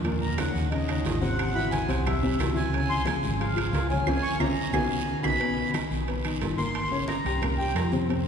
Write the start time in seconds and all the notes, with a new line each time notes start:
Already playing: D#2
0.04 A#2 A#3 A#4, high conga, high timbale, long guiro
0.21 A#5, high conga
0.38 C#3 C#4 D#4 F#5, high conga, high timbale, low timbale, short guiro, claves
0.55 D#2, high conga, short guiro
0.71 C#3 C#4 D#4 D#5, high conga, high timbale, long guiro
0.88 C#3 C#4 D#4, high conga, high timbale, claves
1.05 G#1, high conga, high timbale, low timbale, short guiro
1.21 C3 C4 C5 F#5, high conga, short guiro
1.37 high conga, high timbale, long guiro, claves
1.54 E3 E4 F#4 B5, high conga
1.71 G#5, high conga, high timbale, low timbale, short guiro
1.88 C2 C3 C4 C5, high conga, high timbale, short guiro
2.05 E5, high conga, low conga, high timbale, long guiro, claves
2.23 C3 C4 C5, high conga, low conga
2.39 C#2 E3 E4 F#4, high conga, high timbale, low timbale, short guiro, claves
2.56 G#5, high conga, short guiro
2.73 C#3 C#4 C#5, high conga, high timbale, long guiro
2.90 C6, high conga
3.06 F3 F4 G#4 G#5, high conga, high timbale, low timbale, short guiro, claves
3.23 G#1, high conga, short guiro
3.39 F3 F4 G#4 F5, high conga, high timbale, long guiro
3.56 F3 F4 G#4, high conga, high timbale, claves
3.73 C#2, high conga, high timbale, low timbale, short guiro
3.90 C#3 C#4 C#5 G#5, high conga, short guiro
4.06 C#2 C4 C#4 F4, high conga, high timbale, long guiro, claves
4.23 C#6
4.40 C#2 C4 C#4 F4 A#5, high conga, high timbale, long guiro, claves
4.73 B1 B3 D#4 F#4 G#5, high conga, high timbale, long guiro, claves
5.23 B1 B3 D#4 F#4 B5, high conga, high timbale, long guiro, claves
5.40 B2 B3 B4, high conga, high timbale, long guiro
5.58 high conga
5.74 D#3 D#4 D#5, high conga, high timbale, low timbale, short guiro, claves
5.91 B1, high conga, short guiro
6.08 B2 B3 B4, high conga, high timbale, long guiro
6.25 D#3 D#4 D#5, high conga, high timbale, claves
6.41 G1, high conga, high timbale, low timbale, short guiro
6.58 A#3 A#4 A#5 C6, high conga, short guiro
6.75 high conga, high timbale, long guiro, claves
6.91 C#3 C#4 C#5, high conga
7.08 A#5, high conga, high timbale, low timbale, short guiro
7.25 C2 G3 G4 G5, high conga, high timbale, short guiro
7.42 A#3 A#4 A#5, high conga, low conga, high timbale, long guiro, claves
7.58 G3 G4 G5, high conga
7.75 F2 A#5, high conga, high timbale, low timbale, short guiro, claves
7.92 C3 C4 C5, high conga, short guiro
8.08 C3 C4 C5, high conga, high timbale, long guiro